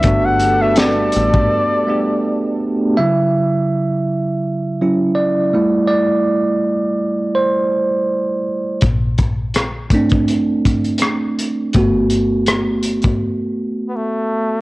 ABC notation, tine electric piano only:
X:1
M:4/4
L:1/16
Q:"Swing 16ths" 1/4=82
K:Glyd
V:1 name="Tine electric piano"
[A,B,DF]2 z [A,B,DF]6 z [A,B,DG]4- [A,B,DG] z | e12 d4 | d8 =c6 z2 | z16 |
z16 |]
V:2 name="Tine electric piano"
z16 | [C,F,E]8- [C,F,E]2 [F,CE]2 z2 [G,A,E]2 | z16 | z6 [A,=CD]6 z4 |
[A,B,F]16 |]